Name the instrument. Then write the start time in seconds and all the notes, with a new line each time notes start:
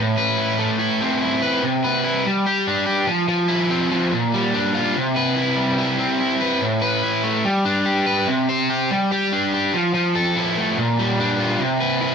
overdriven electric guitar
Already playing: A2
0.18 B4
0.38 E4
0.59 A3
0.79 E4
1.01 C4
1.21 E4
1.42 B4
1.63 C3
1.84 B4
2.04 E4
2.26 G3
2.46 G4
2.67 D4
2.86 G4
3.07 F3
3.28 F3
3.48 E4
3.70 C4
3.92 F3
4.12 A#2
4.34 G3
4.54 D4
4.74 F4
4.96 C3
5.16 B4
5.36 E4
5.56 G3
5.78 E4
5.99 C4
6.20 E4
6.41 B4
6.62 A2
6.82 B4
7.03 E4
7.24 A3
7.45 G3
7.65 D4
7.86 G4
8.06 B4
8.28 C3
8.49 C5
8.70 G4
8.91 G3
9.12 G4
9.33 D4
9.54 G4
9.74 F3
9.94 F3
10.15 A4
10.36 E4
10.58 A3
10.78 A#2
10.99 G3
11.20 D4
11.40 F4
11.60 C3
11.80 B4
12.01 E4